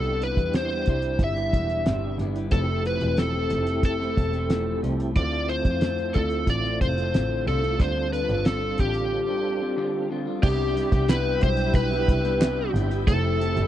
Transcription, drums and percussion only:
0.03 closed hi-hat
0.22 closed hi-hat
0.37 kick, closed hi-hat
0.53 snare, closed hi-hat
0.70 closed hi-hat
0.86 kick, closed hi-hat
1.02 closed hi-hat
1.19 kick, closed hi-hat
1.37 closed hi-hat
1.53 kick, closed hi-hat
1.70 closed hi-hat
1.86 snare, closed hi-hat
2.19 closed hi-hat
2.36 closed hi-hat
2.51 kick, closed hi-hat
2.85 closed hi-hat
3.01 closed hi-hat
3.17 snare, closed hi-hat
3.50 closed hi-hat
3.67 closed hi-hat
3.83 kick, closed hi-hat
4.02 snare
4.17 kick, closed hi-hat
4.33 closed hi-hat
4.50 snare, closed hi-hat
4.84 closed hi-hat
5.00 closed hi-hat
5.16 kick, closed hi-hat
5.32 closed hi-hat
5.49 closed hi-hat
5.65 kick, closed hi-hat
5.81 snare, closed hi-hat
5.98 closed hi-hat
6.14 kick, closed hi-hat
6.30 closed hi-hat
6.47 kick, closed hi-hat
6.64 snare
6.81 kick, closed hi-hat
6.98 closed hi-hat
7.14 snare, closed hi-hat
7.47 closed hi-hat
7.64 closed hi-hat
7.80 kick, closed hi-hat
8.13 closed hi-hat
8.29 closed hi-hat
8.45 snare, closed hi-hat
8.78 kick, closed hi-hat
8.94 closed hi-hat
10.43 kick, crash
10.77 closed hi-hat
10.92 kick, closed hi-hat
11.08 snare, clap, closed hi-hat
11.41 kick, closed hi-hat
11.57 closed hi-hat
11.74 kick, closed hi-hat
11.92 snare
12.08 kick, closed hi-hat
12.25 closed hi-hat
12.41 snare, clap, closed hi-hat
12.76 closed hi-hat
12.91 closed hi-hat
13.07 kick, closed hi-hat
13.41 closed hi-hat
13.57 closed hi-hat

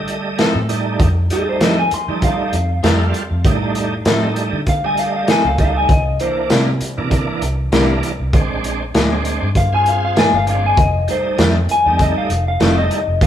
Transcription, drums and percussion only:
0.08 closed hi-hat
0.39 snare, closed hi-hat
0.69 closed hi-hat
1.00 kick, closed hi-hat
1.30 closed hi-hat
1.61 snare, closed hi-hat
1.91 closed hi-hat
2.22 kick, closed hi-hat
2.53 closed hi-hat
2.84 snare, closed hi-hat
3.14 closed hi-hat
3.44 kick, closed hi-hat
3.75 closed hi-hat
4.05 snare, closed hi-hat
4.36 closed hi-hat
4.67 kick, closed hi-hat
4.97 closed hi-hat
5.28 snare, closed hi-hat
5.58 kick, closed hi-hat
5.89 kick, closed hi-hat
6.20 closed hi-hat
6.50 snare, closed hi-hat
6.81 closed hi-hat
7.11 kick, closed hi-hat
7.42 closed hi-hat
7.72 snare, closed hi-hat
8.03 closed hi-hat
8.33 kick, closed hi-hat
8.64 closed hi-hat
8.95 snare, closed hi-hat
9.25 closed hi-hat
9.55 kick, closed hi-hat
9.86 closed hi-hat
10.17 snare, closed hi-hat
10.47 closed hi-hat
10.77 kick, closed hi-hat
11.08 closed hi-hat
11.38 snare, closed hi-hat
11.69 closed hi-hat
11.99 kick, closed hi-hat
12.30 closed hi-hat
12.60 snare, closed hi-hat
12.91 closed hi-hat
13.21 kick, closed hi-hat

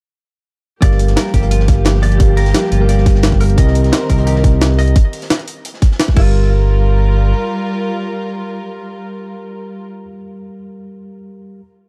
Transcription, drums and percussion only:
0.82 kick, closed hi-hat
0.91 snare
0.99 closed hi-hat
1.08 snare, closed hi-hat
1.16 snare, closed hi-hat
1.26 snare
1.34 kick, snare, closed hi-hat
1.43 closed hi-hat
1.51 closed hi-hat
1.60 snare
1.68 kick, snare, closed hi-hat
1.85 snare, closed hi-hat
1.95 snare
2.03 closed hi-hat, open hi-hat
2.12 closed hi-hat
2.20 kick, closed hi-hat
2.37 closed hi-hat, open hi-hat
2.46 snare, closed hi-hat
2.54 snare, closed hi-hat
2.64 snare
2.72 closed hi-hat
2.89 closed hi-hat
2.98 snare
3.06 kick, snare, closed hi-hat
3.15 snare
3.23 snare, closed hi-hat
3.32 kick, snare
3.40 closed hi-hat, open hi-hat
3.50 closed hi-hat
3.58 kick, closed hi-hat
3.68 snare
3.75 closed hi-hat
3.84 snare, closed hi-hat
3.93 snare, closed hi-hat
4.01 snare
4.09 kick, snare, closed hi-hat
4.18 closed hi-hat
4.27 closed hi-hat
4.36 snare
4.44 kick, snare, closed hi-hat
4.61 snare, closed hi-hat
4.71 snare
4.79 closed hi-hat, open hi-hat
4.88 closed hi-hat
4.96 kick, closed hi-hat
5.13 closed hi-hat, open hi-hat
5.22 snare, closed hi-hat
5.30 snare, closed hi-hat
5.39 snare, closed hi-hat
5.48 closed hi-hat
5.65 closed hi-hat
5.74 snare
5.82 kick, snare, closed hi-hat
5.92 snare
6.00 snare, closed hi-hat
6.08 kick, snare
6.17 kick, crash

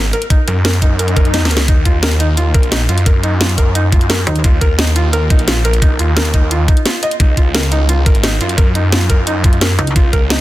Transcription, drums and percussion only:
0.13 closed hi-hat
0.22 closed hi-hat
0.30 kick, closed hi-hat
0.48 closed hi-hat
0.65 snare, closed hi-hat
0.73 closed hi-hat
0.82 kick, closed hi-hat
0.99 closed hi-hat
1.08 closed hi-hat
1.16 kick, closed hi-hat
1.25 closed hi-hat
1.34 snare, closed hi-hat
1.45 snare
1.51 closed hi-hat
1.57 snare, closed hi-hat
1.68 kick, closed hi-hat
1.85 kick, closed hi-hat
2.03 snare, closed hi-hat
2.11 closed hi-hat
2.20 closed hi-hat
2.37 closed hi-hat
2.54 kick, closed hi-hat
2.63 closed hi-hat
2.72 snare, closed hi-hat
2.89 closed hi-hat
2.98 closed hi-hat
3.06 kick, closed hi-hat
3.23 closed hi-hat
3.41 snare, closed hi-hat
3.49 closed hi-hat
3.58 kick, closed hi-hat
3.75 closed hi-hat
3.92 kick, closed hi-hat
4.01 closed hi-hat
4.10 snare, closed hi-hat
4.27 closed hi-hat
4.36 closed hi-hat
4.44 kick, closed hi-hat
4.61 kick, closed hi-hat
4.79 snare, closed hi-hat
4.87 closed hi-hat
4.96 closed hi-hat
5.13 closed hi-hat
5.30 kick, closed hi-hat
5.39 closed hi-hat
5.48 snare, closed hi-hat
5.65 closed hi-hat
5.73 closed hi-hat
5.82 kick, closed hi-hat
5.99 closed hi-hat
6.17 snare, closed hi-hat
6.25 closed hi-hat
6.34 kick, closed hi-hat
6.51 closed hi-hat
6.68 kick, closed hi-hat
6.77 closed hi-hat
6.86 snare, closed hi-hat
7.03 closed hi-hat
7.11 closed hi-hat
7.20 kick, closed hi-hat
7.37 kick, closed hi-hat
7.54 snare, closed hi-hat
7.63 closed hi-hat
7.72 closed hi-hat
7.89 closed hi-hat
8.06 kick, closed hi-hat
8.15 closed hi-hat
8.23 snare, closed hi-hat
8.41 closed hi-hat
8.49 closed hi-hat
8.58 kick, closed hi-hat
8.75 closed hi-hat
8.92 snare, closed hi-hat
9.01 closed hi-hat
9.10 kick, closed hi-hat
9.27 closed hi-hat
9.44 kick, closed hi-hat
9.53 closed hi-hat
9.61 snare, closed hi-hat
9.79 closed hi-hat
9.87 closed hi-hat
9.96 kick, closed hi-hat
10.13 kick, closed hi-hat
10.30 snare, closed hi-hat

